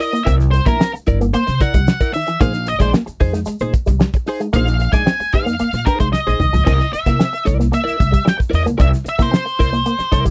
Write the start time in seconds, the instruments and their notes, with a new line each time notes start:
Already playing: lead electric guitar D#5
0.00 clean electric guitar E4 A#4 D5, open hi-hat, shaker
0.13 clean electric guitar A#3, muted clean electric guitar stroke, closed hi-hat, shaker
0.23 upright bass C2, clean electric guitar C4 E4 A#4 D5, lead electric guitar E5, kick, closed hi-hat
0.28 shaker
0.39 muted clean electric guitar stroke, snare, closed hi-hat, shaker
0.51 lead electric guitar C5, muted clean electric guitar stroke, closed hi-hat, shaker
0.66 upright bass A#1, clean electric guitar A#3 E4 A#4 E5, lead electric guitar A#4, kick, snare, closed hi-hat, shaker
0.80 clean electric guitar C4, snare, shaker
0.93 muted clean electric guitar stroke, muted upright bass stroke, closed hi-hat, shaker
1.07 upright bass G1, clean electric guitar E4 A#4 D5, kick, closed hi-hat
1.20 clean electric guitar A#3, muted clean electric guitar stroke, closed hi-hat, shaker
1.34 clean electric guitar A#3, lead electric guitar C5, muted upright bass stroke, closed hi-hat, shaker
1.47 upright bass C3, muted clean electric guitar stroke, snare, closed hi-hat, shaker
1.60 clean electric guitar E4 A#4 D5, lead electric guitar F#5, muted clean electric guitar stroke, kick, snare, closed hi-hat, shaker
1.74 upright bass C2, clean electric guitar G3, muted clean electric guitar stroke, kick, closed hi-hat, shaker
1.87 muted clean electric guitar stroke, snare, shaker
2.01 clean electric guitar E4 A#4 D5, kick, closed hi-hat, shaker
2.13 clean electric guitar D#3, lead electric guitar E5, muted clean electric guitar stroke, open hi-hat, shaker
2.27 clean electric guitar E3, muted clean electric guitar stroke, snare, closed hi-hat, shaker
2.40 upright bass A#1, clean electric guitar A#3 D#4 G#4 C5, lead electric guitar F5, kick, closed hi-hat, shaker
2.54 muted clean electric guitar stroke, snare, closed hi-hat, shaker
2.66 lead electric guitar D#5, muted clean electric guitar stroke, closed hi-hat, shaker
2.79 upright bass A#1, clean electric guitar G#3 D#4 G#4 D5, lead electric guitar C5, kick, snare, closed hi-hat, shaker
2.93 clean electric guitar A#3, snare, shaker
3.07 muted clean electric guitar stroke, muted upright bass stroke, closed hi-hat, shaker
3.20 upright bass F2, clean electric guitar D#4 G#4 C5, kick, open hi-hat
3.33 clean electric guitar G#3, muted clean electric guitar stroke, snare, closed hi-hat, shaker
3.45 clean electric guitar G#3, muted upright bass stroke, muted clean electric guitar stroke, closed hi-hat, shaker
3.59 upright bass A#2, clean electric guitar D#4 G#4 C5, closed hi-hat, shaker
3.73 muted clean electric guitar stroke, kick, closed hi-hat, shaker
3.86 upright bass C2, clean electric guitar G3, muted clean electric guitar stroke, kick, closed hi-hat, shaker
4.00 clean electric guitar G3, muted clean electric guitar stroke, snare, shaker
4.13 muted clean electric guitar stroke, kick, closed hi-hat, shaker
4.26 clean electric guitar D#4 G#4 C5, muted clean electric guitar stroke, open hi-hat, shaker
4.40 clean electric guitar G#3, muted clean electric guitar stroke, closed hi-hat, shaker
4.53 upright bass A#1, clean electric guitar A#3 D#4 G#4 C5, lead electric guitar F5, kick, closed hi-hat, shaker
4.67 muted clean electric guitar stroke, snare, closed hi-hat, shaker
4.80 muted clean electric guitar stroke, closed hi-hat, shaker
4.92 upright bass A#1, clean electric guitar G#3 D#4 G#4 D5, lead electric guitar G#5, kick, snare, closed hi-hat, shaker
5.06 clean electric guitar C4, snare, shaker
5.19 muted clean electric guitar stroke, muted upright bass stroke, closed hi-hat, shaker
5.33 upright bass F2, clean electric guitar D#4 G#4 C5, lead electric guitar F5, kick, closed hi-hat
5.46 clean electric guitar A#3, muted clean electric guitar stroke, closed hi-hat, shaker
5.59 clean electric guitar A#3, muted upright bass stroke, closed hi-hat, shaker
5.73 upright bass A#2, muted clean electric guitar stroke, snare, closed hi-hat, shaker
5.86 clean electric guitar D#4 G#4 C5, lead electric guitar A#4, muted clean electric guitar stroke, kick, snare, closed hi-hat, shaker
6.00 upright bass C2, clean electric guitar G#3, lead electric guitar C5, kick, closed hi-hat, shaker
6.13 lead electric guitar D#5, muted clean electric guitar stroke, snare, shaker
6.27 upright bass A#1, clean electric guitar D#4 G#4 C5, shaker
6.40 upright bass C2, clean electric guitar D#3, muted clean electric guitar stroke, mid tom, shaker
6.53 upright bass C#2, clean electric guitar F3, muted clean electric guitar stroke, floor tom, shaker
6.65 upright bass C2, clean electric guitar C4 E4 A#4 D5, lead electric guitar D#5, kick, crash, shaker
6.80 muted clean electric guitar stroke, snare, closed hi-hat, shaker
6.93 lead electric guitar E5, muted upright bass stroke, muted clean electric guitar stroke, closed hi-hat, shaker
7.06 upright bass C3, clean electric guitar A#3 E4 A#4 E5, kick, snare, closed hi-hat, shaker
7.20 clean electric guitar C4, snare, shaker
7.33 muted clean electric guitar stroke, closed hi-hat, shaker
7.45 upright bass C2, clean electric guitar E4 A#4 D5, kick, closed hi-hat, shaker
7.58 clean electric guitar A#3, muted clean electric guitar stroke, snare, closed hi-hat, shaker
7.72 clean electric guitar A#3, lead electric guitar E5, muted clean electric guitar stroke, closed hi-hat, shaker
7.84 clean electric guitar E4 A#4 D5, muted upright bass stroke, closed hi-hat, shaker
7.97 upright bass C2, muted clean electric guitar stroke, kick, closed hi-hat
8.02 shaker
8.11 clean electric guitar G3, muted clean electric guitar stroke, kick, closed hi-hat, shaker
8.25 clean electric guitar G3, lead electric guitar G5, muted clean electric guitar stroke, snare, shaker
8.38 muted clean electric guitar stroke, kick, shaker
8.50 upright bass E2, clean electric guitar E4 A#4 D5, muted clean electric guitar stroke, open hi-hat, shaker
8.55 lead electric guitar D#5
8.64 upright bass C#2, clean electric guitar A#3, muted clean electric guitar stroke, closed hi-hat, shaker
8.78 upright bass C2, clean electric guitar C4 E4 A#4 D5, lead electric guitar E5, kick, closed hi-hat, shaker
8.91 muted clean electric guitar stroke, snare, closed hi-hat, shaker
9.05 muted clean electric guitar stroke, muted upright bass stroke, closed hi-hat, shaker
9.09 lead electric guitar E5
9.19 upright bass C3, clean electric guitar A#3 E4 A#4 E5, lead electric guitar C5, kick, snare, closed hi-hat, shaker
9.31 clean electric guitar C4, snare, shaker
9.46 muted clean electric guitar stroke, closed hi-hat, shaker
9.59 upright bass C2, clean electric guitar E4 A#4 D5, kick, open hi-hat, shaker
9.71 clean electric guitar A#3, muted clean electric guitar stroke, closed hi-hat, shaker
9.86 clean electric guitar A#3, closed hi-hat, shaker
9.99 muted upright bass stroke, muted clean electric guitar stroke, snare, closed hi-hat, shaker
10.12 upright bass C2, clean electric guitar E4 A#4 D5, muted clean electric guitar stroke, kick, snare, closed hi-hat, shaker
10.25 clean electric guitar G3, muted clean electric guitar stroke, kick, closed hi-hat, shaker